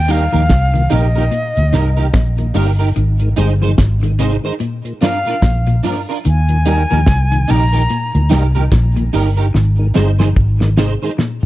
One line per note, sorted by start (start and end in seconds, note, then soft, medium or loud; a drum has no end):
0.00 0.27 D#2 loud
0.00 0.13 G5 loud
0.08 0.29 G3 medium
0.08 0.21 G3 medium
0.08 0.21 A#3 medium
0.08 0.23 D#4 medium
0.08 0.21 D#4 medium
0.08 0.24 G4 medium
0.08 0.24 A#4 medium
0.08 0.95 F5 loud
0.08 closed hi-hat medium
0.32 0.42 D#2 medium
0.32 0.49 D#2 medium
0.32 0.42 A#2 medium
0.32 0.47 F3 medium
0.32 0.41 D#4 soft
0.32 0.41 G4 medium
0.32 0.41 A#4 medium
0.50 0.87 C2 medium
0.50 kick loud
0.50 snare loud
0.50 closed hi-hat medium
0.74 0.82 D#2 medium
0.74 0.83 A#2 medium
0.74 0.88 D#3 medium
0.74 closed hi-hat medium
0.90 1.28 A#1 medium
0.90 1.11 C3 medium
0.90 1.03 G3 medium
0.90 1.03 A#3 medium
0.90 1.05 D#4 medium
0.90 1.03 D#4 medium
0.90 1.06 G4 medium
0.90 1.06 A#4 medium
0.90 closed hi-hat medium
0.94 2.57 D#5 medium
1.15 1.24 D#2 medium
1.15 1.24 A#2 medium
1.15 1.24 D#4 medium
1.15 1.24 G4 medium
1.15 1.23 A#4 medium
1.31 1.52 A#2 medium
1.31 closed hi-hat medium
1.56 1.72 D2 medium
1.56 1.65 D#2 medium
1.56 1.65 A#2 medium
1.56 closed hi-hat medium
1.72 2.10 C2 medium
1.72 1.93 G2 medium
1.72 1.85 G3 medium
1.72 1.85 A#3 medium
1.72 1.88 D#4 medium
1.72 1.86 D#4 medium
1.72 1.88 G4 medium
1.72 1.88 A#4 medium
1.72 snare medium
1.72 closed hi-hat medium
1.97 2.06 D#2 medium
1.97 2.06 A#2 medium
1.97 2.06 D#4 medium
1.97 2.05 G4 medium
1.97 2.05 A#4 medium
1.97 closed hi-hat soft
2.14 2.51 A#1 medium
2.14 2.34 A#2 medium
2.14 kick loud
2.14 snare loud
2.14 closed hi-hat medium
2.38 2.47 D#2 medium
2.38 2.47 A#2 medium
2.38 2.53 A#2 medium
2.38 closed hi-hat medium
2.54 2.92 G1 medium
2.54 2.76 G2 medium
2.54 2.67 G3 medium
2.54 2.67 A#3 medium
2.54 2.69 D#4 medium
2.54 2.67 D#4 medium
2.54 2.70 G4 medium
2.54 2.70 A#4 medium
2.54 open hi-hat medium
2.79 2.88 D#4 medium
2.79 2.88 G4 medium
2.79 2.87 A#4 medium
2.96 3.33 G#1 loud
2.96 3.17 D#3 medium
2.96 closed hi-hat medium
3.20 3.29 G#2 medium
3.20 3.29 D#3 medium
3.20 closed hi-hat medium
3.36 3.74 G1 medium
3.36 3.58 G3 medium
3.36 3.50 G#3 medium
3.36 3.50 C4 medium
3.36 3.52 D#4 medium
3.36 3.50 D#4 medium
3.36 3.52 G#4 medium
3.36 3.52 C5 loud
3.36 closed hi-hat medium
3.62 3.71 G#2 medium
3.62 3.71 D#3 medium
3.62 3.76 F3 medium
3.62 3.71 D#4 medium
3.62 3.70 G#4 medium
3.62 3.70 C5 medium
3.62 closed hi-hat soft
3.78 4.37 G#1 medium
3.78 kick loud
3.78 snare loud
3.78 closed hi-hat medium
4.03 4.12 G#2 medium
4.03 4.17 D#3 medium
4.03 4.12 D#3 medium
4.03 closed hi-hat medium
4.19 4.40 C3 medium
4.19 4.32 G#3 medium
4.19 4.32 C4 medium
4.19 4.34 D#4 medium
4.19 4.32 D#4 medium
4.19 4.35 G#4 medium
4.19 4.35 C5 loud
4.19 closed hi-hat medium
4.44 4.52 G#2 medium
4.44 4.52 D#3 medium
4.44 4.53 D#4 medium
4.44 4.53 G#4 medium
4.44 4.52 C5 medium
4.60 4.81 A#2 medium
4.60 closed hi-hat medium
4.84 4.93 A#2 medium
4.84 closed hi-hat soft
5.01 5.22 G2 medium
5.01 5.14 F3 medium
5.01 5.14 A#3 medium
5.01 5.14 D4 medium
5.01 5.17 D4 medium
5.01 5.17 F4 medium
5.01 5.18 A#4 medium
5.01 5.81 F5 loud
5.01 snare medium
5.01 closed hi-hat medium
5.25 5.35 A#2 medium
5.25 5.35 D4 medium
5.25 5.35 F4 medium
5.25 5.34 A#4 medium
5.25 closed hi-hat soft
5.42 5.80 A#1 medium
5.42 5.63 A#2 medium
5.42 kick loud
5.42 snare loud
5.42 closed hi-hat medium
5.66 5.76 A#2 medium
5.66 5.81 A#2 medium
5.66 closed hi-hat medium
5.83 6.05 G2 medium
5.83 5.96 F3 medium
5.83 5.96 A#3 medium
5.83 5.98 D4 medium
5.83 5.96 D4 medium
5.83 5.99 F4 medium
5.83 5.99 A#4 medium
5.83 open hi-hat medium
6.09 6.17 D4 medium
6.09 6.17 F4 medium
6.09 6.17 A#4 medium
6.25 6.84 D#2 loud
6.25 6.46 D#3 medium
6.25 7.52 G#5 loud
6.25 closed hi-hat medium
6.49 6.58 D#2 medium
6.49 6.58 A#2 medium
6.49 closed hi-hat medium
6.65 6.78 G3 medium
6.65 6.87 G3 medium
6.65 6.78 A#3 medium
6.65 6.81 D#4 medium
6.65 6.78 D#4 medium
6.65 6.81 G4 medium
6.65 6.82 A#4 medium
6.65 closed hi-hat medium
6.90 6.99 D#2 medium
6.90 7.06 D#2 medium
6.90 6.99 A#2 medium
6.90 7.05 F3 medium
6.90 6.99 D#4 medium
6.90 6.99 G4 medium
6.90 6.98 A#4 medium
6.90 closed hi-hat soft
7.06 7.44 C2 loud
7.06 kick loud
7.06 snare loud
7.06 closed hi-hat medium
7.31 7.40 D#2 medium
7.31 7.40 A#2 medium
7.31 7.46 D#3 medium
7.31 closed hi-hat medium
7.48 7.86 A#1 medium
7.48 7.69 C3 medium
7.48 7.61 G3 medium
7.48 7.61 A#3 medium
7.48 7.63 D#4 medium
7.48 7.61 D#4 medium
7.48 7.63 G4 medium
7.48 7.64 A#4 medium
7.48 8.32 A#5 loud
7.48 open hi-hat medium
7.72 7.82 D#2 medium
7.72 7.81 A#2 medium
7.72 7.81 D#4 medium
7.72 7.81 G4 medium
7.72 7.81 A#4 medium
7.72 closed hi-hat soft
7.89 8.10 A#2 medium
7.89 closed hi-hat medium
8.14 8.29 D2 medium
8.14 8.23 D#2 medium
8.14 8.23 A#2 medium
8.14 closed hi-hat soft
8.30 8.68 C2 loud
8.30 8.51 G2 medium
8.30 8.43 G3 medium
8.30 8.43 A#3 medium
8.30 8.45 D#4 medium
8.30 8.43 D#4 medium
8.30 8.45 G4 medium
8.30 8.46 A#4 loud
8.30 snare medium
8.30 closed hi-hat medium
8.55 8.64 D#2 medium
8.55 8.64 A#2 medium
8.55 8.63 D#4 medium
8.55 8.63 G4 medium
8.55 8.63 A#4 medium
8.55 closed hi-hat soft
8.72 9.09 A#1 loud
8.72 8.92 A#2 medium
8.72 kick loud
8.72 snare loud
8.72 closed hi-hat medium
8.96 9.05 D#2 medium
8.96 9.10 A#2 medium
8.96 9.05 A#2 medium
8.96 closed hi-hat medium
9.13 9.50 G1 medium
9.13 9.33 G2 medium
9.13 9.25 G3 medium
9.13 9.25 A#3 medium
9.13 9.28 D#4 medium
9.13 9.25 D#4 medium
9.13 9.28 G4 medium
9.13 9.28 A#4 loud
9.13 open hi-hat medium
9.37 9.46 D#4 medium
9.37 9.45 G4 medium
9.37 9.45 A#4 medium
9.37 closed hi-hat soft
9.54 9.91 G#1 loud
9.54 9.75 D#3 medium
9.54 snare medium
9.79 9.87 G#2 medium
9.79 9.87 D#3 medium
9.94 10.32 G1 medium
9.94 10.16 G3 medium
9.94 10.08 G#3 medium
9.94 10.07 C4 medium
9.94 10.09 D#4 medium
9.94 10.08 D#4 medium
9.94 10.10 G#4 medium
9.94 10.10 C5 medium
9.94 snare medium
10.19 10.28 G#2 medium
10.19 10.28 D#3 medium
10.19 10.34 F3 medium
10.19 10.28 D#4 medium
10.19 10.28 G#4 medium
10.19 10.27 C5 medium
10.19 snare medium
10.36 10.95 G#1 medium
10.36 kick loud
10.60 10.70 G#2 medium
10.60 10.74 D#3 medium
10.60 10.70 D#3 medium
10.60 snare medium
10.77 10.98 C3 medium
10.77 10.90 G#3 medium
10.77 10.90 C4 medium
10.77 10.92 D#4 medium
10.77 10.90 D#4 medium
10.77 10.93 G#4 medium
10.77 10.93 C5 loud
10.77 snare medium
11.02 11.10 G#2 medium
11.02 11.10 D#3 medium
11.02 11.11 D#4 medium
11.02 11.10 G#4 medium
11.02 11.10 C5 medium
11.18 11.39 A#2 medium
11.18 snare medium